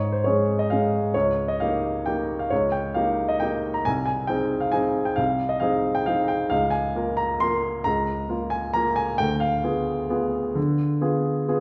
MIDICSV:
0, 0, Header, 1, 2, 480
1, 0, Start_track
1, 0, Key_signature, -4, "major"
1, 0, Tempo, 453858
1, 1212, Time_signature, 3, 2, 24, 8
1, 4091, Tempo, 442152
1, 8891, Tempo, 457317
1, 12367, End_track
2, 0, Start_track
2, 0, Title_t, "Grand piano"
2, 0, Program_c, 0, 0
2, 0, Control_c, 0, 64, 127
2, 0, Note_on_c, 0, 44, 37
2, 0, Note_on_c, 0, 73, 57
2, 129, Note_off_c, 0, 73, 0
2, 131, Note_on_c, 0, 72, 46
2, 245, Note_off_c, 0, 44, 0
2, 255, Note_off_c, 0, 72, 0
2, 256, Note_on_c, 0, 73, 50
2, 272, Note_on_c, 0, 56, 29
2, 276, Note_on_c, 0, 61, 27
2, 276, Note_on_c, 0, 68, 32
2, 624, Note_off_c, 0, 73, 0
2, 624, Note_on_c, 0, 75, 50
2, 711, Note_off_c, 0, 56, 0
2, 713, Note_off_c, 0, 61, 0
2, 713, Note_off_c, 0, 68, 0
2, 741, Note_on_c, 0, 77, 55
2, 745, Note_off_c, 0, 75, 0
2, 758, Note_on_c, 0, 56, 29
2, 762, Note_on_c, 0, 61, 26
2, 767, Note_on_c, 0, 68, 30
2, 1176, Note_off_c, 0, 56, 0
2, 1178, Note_off_c, 0, 61, 0
2, 1180, Note_off_c, 0, 68, 0
2, 1209, Note_on_c, 0, 73, 56
2, 1210, Note_off_c, 0, 77, 0
2, 1223, Note_on_c, 0, 37, 41
2, 1229, Control_c, 0, 64, 0
2, 1362, Control_c, 0, 64, 127
2, 1569, Note_off_c, 0, 73, 0
2, 1569, Note_on_c, 0, 75, 52
2, 1685, Note_off_c, 0, 37, 0
2, 1693, Note_off_c, 0, 75, 0
2, 1694, Note_on_c, 0, 77, 56
2, 1709, Note_on_c, 0, 58, 30
2, 1714, Note_on_c, 0, 63, 29
2, 1716, Note_on_c, 0, 67, 32
2, 2146, Note_off_c, 0, 58, 0
2, 2148, Note_off_c, 0, 63, 0
2, 2150, Note_off_c, 0, 67, 0
2, 2175, Note_on_c, 0, 79, 53
2, 2181, Note_off_c, 0, 77, 0
2, 2191, Note_on_c, 0, 58, 31
2, 2193, Note_on_c, 0, 63, 29
2, 2199, Note_on_c, 0, 67, 33
2, 2532, Note_on_c, 0, 77, 49
2, 2537, Note_off_c, 0, 79, 0
2, 2617, Note_off_c, 0, 58, 0
2, 2618, Note_off_c, 0, 63, 0
2, 2621, Note_off_c, 0, 67, 0
2, 2648, Note_on_c, 0, 73, 57
2, 2650, Note_off_c, 0, 77, 0
2, 2666, Note_on_c, 0, 37, 38
2, 2674, Control_c, 0, 64, 0
2, 2827, Control_c, 0, 64, 127
2, 2875, Note_on_c, 0, 79, 51
2, 2882, Note_off_c, 0, 73, 0
2, 3114, Note_on_c, 0, 77, 56
2, 3117, Note_off_c, 0, 37, 0
2, 3119, Note_off_c, 0, 79, 0
2, 3129, Note_on_c, 0, 58, 30
2, 3132, Note_on_c, 0, 63, 30
2, 3136, Note_on_c, 0, 67, 32
2, 3475, Note_on_c, 0, 75, 56
2, 3487, Note_off_c, 0, 77, 0
2, 3575, Note_off_c, 0, 58, 0
2, 3577, Note_off_c, 0, 63, 0
2, 3579, Note_off_c, 0, 67, 0
2, 3594, Note_on_c, 0, 79, 59
2, 3607, Note_off_c, 0, 75, 0
2, 3609, Note_on_c, 0, 58, 30
2, 3619, Note_on_c, 0, 63, 29
2, 3621, Note_on_c, 0, 67, 30
2, 3956, Note_on_c, 0, 82, 56
2, 3965, Note_off_c, 0, 79, 0
2, 4045, Note_off_c, 0, 58, 0
2, 4050, Note_off_c, 0, 63, 0
2, 4051, Note_off_c, 0, 67, 0
2, 4074, Note_on_c, 0, 80, 72
2, 4080, Note_off_c, 0, 82, 0
2, 4091, Note_on_c, 0, 36, 41
2, 4109, Control_c, 0, 64, 0
2, 4261, Control_c, 0, 64, 127
2, 4279, Note_off_c, 0, 80, 0
2, 4295, Note_on_c, 0, 80, 61
2, 4532, Note_on_c, 0, 79, 60
2, 4546, Note_off_c, 0, 36, 0
2, 4546, Note_off_c, 0, 80, 0
2, 4549, Note_on_c, 0, 60, 29
2, 4552, Note_on_c, 0, 63, 31
2, 4555, Note_on_c, 0, 68, 33
2, 4890, Note_on_c, 0, 77, 56
2, 4907, Note_off_c, 0, 79, 0
2, 4994, Note_off_c, 0, 60, 0
2, 4996, Note_off_c, 0, 63, 0
2, 4997, Note_off_c, 0, 68, 0
2, 5012, Note_on_c, 0, 80, 63
2, 5027, Note_on_c, 0, 60, 31
2, 5028, Note_off_c, 0, 77, 0
2, 5031, Note_on_c, 0, 63, 32
2, 5037, Note_on_c, 0, 68, 33
2, 5378, Note_on_c, 0, 79, 57
2, 5390, Note_off_c, 0, 80, 0
2, 5472, Note_off_c, 0, 60, 0
2, 5473, Note_off_c, 0, 63, 0
2, 5477, Note_off_c, 0, 68, 0
2, 5491, Note_on_c, 0, 77, 64
2, 5509, Note_off_c, 0, 79, 0
2, 5510, Note_on_c, 0, 36, 41
2, 5538, Control_c, 0, 64, 0
2, 5715, Control_c, 0, 64, 127
2, 5851, Note_on_c, 0, 75, 53
2, 5861, Note_off_c, 0, 77, 0
2, 5969, Note_on_c, 0, 77, 61
2, 5977, Note_off_c, 0, 36, 0
2, 5985, Note_off_c, 0, 75, 0
2, 5989, Note_on_c, 0, 60, 31
2, 5989, Note_on_c, 0, 63, 32
2, 5994, Note_on_c, 0, 68, 37
2, 6348, Note_on_c, 0, 79, 64
2, 6351, Note_off_c, 0, 77, 0
2, 6440, Note_off_c, 0, 60, 0
2, 6440, Note_off_c, 0, 63, 0
2, 6443, Note_off_c, 0, 68, 0
2, 6472, Note_on_c, 0, 77, 69
2, 6479, Note_off_c, 0, 79, 0
2, 6485, Note_on_c, 0, 60, 35
2, 6490, Note_on_c, 0, 63, 34
2, 6494, Note_on_c, 0, 68, 35
2, 6709, Note_on_c, 0, 79, 56
2, 6720, Note_off_c, 0, 77, 0
2, 6917, Note_off_c, 0, 60, 0
2, 6919, Note_off_c, 0, 63, 0
2, 6921, Note_off_c, 0, 68, 0
2, 6945, Note_on_c, 0, 77, 74
2, 6952, Note_off_c, 0, 79, 0
2, 6959, Note_on_c, 0, 37, 44
2, 6979, Control_c, 0, 64, 0
2, 7145, Control_c, 0, 64, 127
2, 7170, Note_on_c, 0, 80, 61
2, 7187, Note_off_c, 0, 77, 0
2, 7422, Note_off_c, 0, 37, 0
2, 7441, Note_on_c, 0, 58, 34
2, 7448, Note_on_c, 0, 65, 35
2, 7451, Note_on_c, 0, 70, 38
2, 7673, Note_off_c, 0, 80, 0
2, 7674, Note_on_c, 0, 82, 68
2, 7894, Note_off_c, 0, 58, 0
2, 7898, Note_off_c, 0, 65, 0
2, 7899, Note_off_c, 0, 70, 0
2, 7928, Note_on_c, 0, 84, 76
2, 7930, Note_off_c, 0, 82, 0
2, 7943, Note_on_c, 0, 58, 35
2, 7949, Note_on_c, 0, 70, 39
2, 7950, Note_on_c, 0, 65, 34
2, 8380, Note_off_c, 0, 58, 0
2, 8384, Note_off_c, 0, 65, 0
2, 8384, Note_off_c, 0, 70, 0
2, 8406, Note_on_c, 0, 82, 78
2, 8416, Note_off_c, 0, 84, 0
2, 8422, Note_on_c, 0, 37, 45
2, 8438, Control_c, 0, 64, 0
2, 8621, Control_c, 0, 64, 127
2, 8876, Note_off_c, 0, 37, 0
2, 8890, Note_on_c, 0, 58, 34
2, 8896, Note_on_c, 0, 65, 35
2, 8900, Note_on_c, 0, 70, 39
2, 9114, Note_on_c, 0, 80, 65
2, 9121, Note_off_c, 0, 82, 0
2, 9333, Note_off_c, 0, 58, 0
2, 9336, Note_off_c, 0, 65, 0
2, 9338, Note_off_c, 0, 70, 0
2, 9359, Note_on_c, 0, 82, 76
2, 9367, Note_off_c, 0, 80, 0
2, 9371, Note_on_c, 0, 58, 37
2, 9380, Note_on_c, 0, 65, 36
2, 9383, Note_on_c, 0, 70, 40
2, 9592, Note_on_c, 0, 80, 72
2, 9609, Note_off_c, 0, 82, 0
2, 9807, Note_off_c, 0, 58, 0
2, 9811, Note_off_c, 0, 65, 0
2, 9813, Note_off_c, 0, 70, 0
2, 9826, Note_on_c, 0, 79, 80
2, 9838, Note_off_c, 0, 80, 0
2, 9844, Note_on_c, 0, 38, 47
2, 9865, Control_c, 0, 64, 0
2, 10015, Control_c, 0, 64, 127
2, 10057, Note_on_c, 0, 77, 65
2, 10069, Note_off_c, 0, 79, 0
2, 10299, Note_off_c, 0, 38, 0
2, 10305, Note_on_c, 0, 65, 35
2, 10307, Note_on_c, 0, 59, 35
2, 10311, Note_on_c, 0, 68, 39
2, 10751, Note_off_c, 0, 65, 0
2, 10752, Note_off_c, 0, 59, 0
2, 10754, Note_off_c, 0, 68, 0
2, 10792, Note_on_c, 0, 59, 37
2, 10794, Note_on_c, 0, 65, 36
2, 10798, Note_on_c, 0, 68, 38
2, 11235, Note_off_c, 0, 59, 0
2, 11236, Note_off_c, 0, 65, 0
2, 11238, Note_off_c, 0, 68, 0
2, 11265, Note_on_c, 0, 50, 51
2, 11299, Control_c, 0, 64, 0
2, 11484, Control_c, 0, 64, 127
2, 11735, Note_off_c, 0, 50, 0
2, 11748, Note_on_c, 0, 59, 34
2, 11752, Note_on_c, 0, 65, 38
2, 11754, Note_on_c, 0, 68, 40
2, 12202, Note_off_c, 0, 59, 0
2, 12204, Note_off_c, 0, 65, 0
2, 12205, Note_off_c, 0, 68, 0
2, 12236, Note_off_c, 0, 77, 0
2, 12243, Note_on_c, 0, 59, 35
2, 12246, Note_on_c, 0, 65, 36
2, 12247, Note_on_c, 0, 68, 41
2, 12367, Note_off_c, 0, 59, 0
2, 12367, Note_off_c, 0, 65, 0
2, 12367, Note_off_c, 0, 68, 0
2, 12367, End_track
0, 0, End_of_file